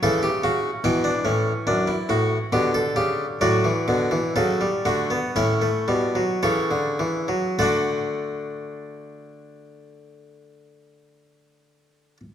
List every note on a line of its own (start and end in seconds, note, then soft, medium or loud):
0.03 0.42 C#3 medium
0.03 0.28 E3 loud
0.03 0.23 A4 loud
0.03 0.82 E5 medium
0.23 0.43 G4 medium
0.44 0.69 C#3 medium
0.44 0.69 F#4 loud
0.84 1.10 B2 medium
0.84 2.49 E3 medium
0.84 1.04 E4 loud
0.84 3.38 G5 medium
1.04 1.25 D4 medium
1.25 1.51 A2 medium
1.25 1.51 C#4 medium
1.67 1.93 F#2 medium
1.67 1.88 D4 medium
1.88 2.09 E4 medium
2.09 2.36 A2 medium
2.09 2.36 F#4 medium
2.52 2.80 B2 medium
2.52 3.39 D3 medium
2.52 2.74 G4 medium
2.74 2.96 A4 medium
2.96 3.24 C#3 medium
2.96 3.24 G4 medium
3.41 3.70 A2 medium
3.41 3.64 F#3 medium
3.41 4.33 F#4 medium
3.41 5.32 D5 medium
3.64 3.87 E3 medium
3.88 4.18 B2 medium
3.88 4.11 D3 medium
4.11 4.35 E3 medium
4.36 4.67 C#3 medium
4.36 4.60 F#3 medium
4.36 4.67 A4 medium
4.61 4.85 G3 medium
4.85 5.17 D3 medium
4.85 5.10 A3 medium
4.85 5.17 F#4 medium
5.11 5.35 B3 medium
5.36 5.69 A2 medium
5.36 5.61 C#4 medium
5.36 6.39 E4 medium
5.36 6.39 E5 medium
5.62 5.88 A3 medium
5.88 6.22 B2 medium
5.88 6.14 G3 medium
6.15 6.42 F#3 medium
6.43 7.55 C#3 medium
6.43 6.70 E3 medium
6.43 7.55 A4 medium
6.43 7.55 C#5 medium
6.71 6.99 D3 medium
6.99 7.28 E3 medium
7.28 7.57 F#3 medium
7.59 12.17 D3 medium
7.59 12.17 A3 medium
7.59 12.20 D4 medium
7.59 12.20 F#4 medium
7.59 12.17 A4 medium
7.59 12.17 F#5 medium